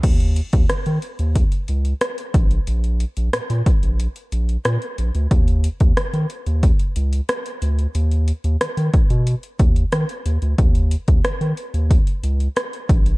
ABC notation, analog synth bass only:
X:1
M:4/4
L:1/16
Q:1/4=91
K:Bbphr
V:1 name="Analog synth bass" clef=bass
E,,3 E,, E, E, z E,,2 z D,,2 z2 B,,,2 | B,,,3 B,,, B,, B,, z B,,,2 z B,,,2 B,, z B,,, =D,, | E,,3 E,, E, E, z E,,2 z D,,2 z2 =D,,2 | ^D,,3 D,, ^D, D, z =B,,2 z D,,2 D, z D,, =D,, |
E,,3 E,, E, E, z E,,2 z D,,2 z2 B,,,2 |]